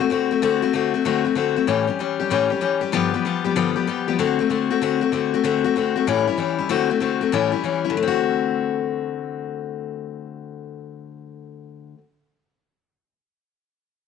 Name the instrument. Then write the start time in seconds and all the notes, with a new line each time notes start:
steel-string acoustic guitar
0.00 A3 C4 F#4
0.10 D3 A3 C4 F#4
0.31 A3 C4 F#4
0.42 D3 A3 C4 F#4
0.62 A3 C4 F#4
0.73 D3 A3 C4 F#4
0.94 A3 C4 F#4
1.05 D3 A3 C4 F#4
1.24 A3 C4 F#4
1.35 D3 A3 C4 F#4
1.56 A3 C4 F#4
1.67 A2 E3 G3 C#4 G4
1.87 G3 C#4 G4
1.99 E3 G3 C#4 G4
2.20 G3 C#4 G4
2.30 A2 E3 G3 C#4 G4
2.50 G3 C#4 G4
2.61 E3 G3 C#4 G4
2.81 G3 C#4 G4
2.92 G2 D3 F3 G3 B3 G4
3.14 F3 G3 B3 G4
3.25 F3 G3 B3 G4
3.45 F3 G3 B3 G4
3.56 G2 D3 F3 G3 B3 G4
3.76 F3 G3 B3 G4
3.87 F3 G3 B3 G4
4.08 F3 G3 B3 G4
4.19 D3 A3 C4 F#4
4.39 A3 C4 F#4
4.50 D3 A3 C4 F#4
4.70 A3 C4 F#4
4.82 D3 A3 C4 F#4
5.01 A3 C4 F#4
5.12 D3 A3 C4 F#4
5.34 A3 C4 F#4
5.44 D3 A3 C4 F#4
5.64 A3 C4 F#4
5.76 D3 A3 C4 F#4
5.96 A3 C4 F#4
6.07 A2 E3 G3 C#4 E4
6.27 G3 C#4 E4
6.37 E3 G3 C#4 E4
6.58 G3 C#4 E4
6.69 D3 A3 C4 F#4
6.90 A3 C4 F#4
7.00 D3 A3 C4 F#4
7.21 A3 C4 F#4
7.32 A2 E3 G3 C#4 E4
7.52 G3 C#4 E4
7.64 E3 G3 C#4 E4
7.84 G3 C#4 E4
7.90 D3
7.97 A3
8.03 C4
8.08 F#4